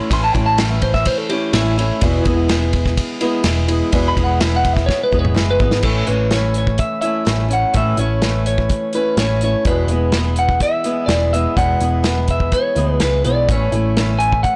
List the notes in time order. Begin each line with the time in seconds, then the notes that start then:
Already playing: C#4 E4
0.10 A1 A2 E3 A3 C#4 E4 C6, kick, ride
0.24 A5
0.33 A1 C#4 E4 G5, kick, ride
0.37 A3
0.46 A5
0.57 E3 A3 C#4 E4 G5, snare, ride
0.70 E5
0.82 C5, kick, ride
0.94 E5, kick, snare
1.05 C5, kick, ride
1.18 A4
1.30 A3 C#4 E4 G4, ride
1.53 A1 E3 A3 C#4 E4, snare, ride
1.78 A3 C#4 E4, ride
2.01 E1 E2 B2 E3 G#3 B3 E4, kick, ride
2.25 E1 E3 G#3 B3 E4, kick, ride
2.48 E3 G#3 B3 E4, snare, ride
2.73 kick, ride
2.86 kick, snare
2.97 kick, ride
3.21 E3 G#3 B3 E4, ride
3.44 E1 E3 G#3 B3 E4, snare, ride
3.68 E3 G#3 B3 E4, ride
3.92 E1 E2 B2 E3 G#3 B3 E4, kick, ride
4.08 B5
4.17 E1 E3 G#3 B3 E4, kick, ride
4.24 F#5
4.40 E3 G#3 B3 E5, snare, ride
4.44 E4
4.56 F#5
4.65 kick, ride
4.73 E5, kick, snare
4.86 C#5, kick, snare
5.03 B4
5.12 E1 E3 G#3 B3 E4, kick
5.19 C#5
5.25 mid tom
5.34 F#1 E3 G#3 B3 E4 B4, snare
5.51 B4
5.59 G#1 E3 G#3 B3 E4, kick
5.71 snare
5.83 A1 A2 E3 A3 C#4 E4 A4, kick, crash
6.07 A1 A3 C#4 E4 B4, closed hi-hat
6.31 E3 A3 C#4 E4 C#5, snare, closed hi-hat
6.54 closed hi-hat
6.58 C#5
6.67 kick
6.78 E5, kick, closed hi-hat
7.01 A3 C#4 E4 E5, closed hi-hat
7.25 A1 E3 A3 C#4 E4, snare, closed hi-hat
7.48 A3 C#4 E4, closed hi-hat
7.53 F#5
7.73 A1 A2 E3 A3 C#4 E4 E5, kick, closed hi-hat
7.97 A1 A3 C#4 E4 C#5, closed hi-hat
8.22 E3 A3 C#4, snare, closed hi-hat
8.26 E4
8.46 C#5, closed hi-hat
8.58 kick
8.70 kick, closed hi-hat
8.93 C#4 E4 B4, closed hi-hat
8.97 A3
9.17 A1 E3 A3 C#4 C#5, snare, closed hi-hat
9.22 E4
9.41 C#4 E4 C#5, closed hi-hat
9.46 A3
9.65 E1 E2 B2 E3 G#3 B3 E4 B4, kick, closed hi-hat
9.87 E1 B3 E4, closed hi-hat
9.92 E3 G#3
10.12 E3 G#3, snare, closed hi-hat
10.17 B3 E4
10.36 F#5, closed hi-hat
10.49 kick
10.60 E5, kick, closed hi-hat
10.84 E3 G#3 B3 E4, closed hi-hat
11.06 E1 E3 G#3 D5, snare, closed hi-hat
11.11 B3 E4
11.33 E3 G#3 B3 E4 E5, closed hi-hat
11.57 E1 E2 B2 E3 G#3 B3 E4 F#5, kick, closed hi-hat
11.80 E1 E3 G#3 B3 E4, closed hi-hat
12.03 E3 G#3 B3 E4, snare, closed hi-hat
12.28 E5, kick, closed hi-hat
12.40 kick
12.52 C#5, kick, closed hi-hat
12.75 D2 E3 G#3 B3 E4, closed hi-hat
13.00 C#2 E3 G#3 B3 E4 B4, snare, closed hi-hat
13.24 B1 E3 G#3 B3 E4 D5, closed hi-hat
13.49 A1 A2 E3 A3 C#4 E4 C#5, kick, closed hi-hat
13.72 A1 A3 C#4 E4, closed hi-hat
13.97 E3 A3 C#4 E4, snare, closed hi-hat
14.19 G#5, closed hi-hat
14.32 kick
14.43 F#5, kick, closed hi-hat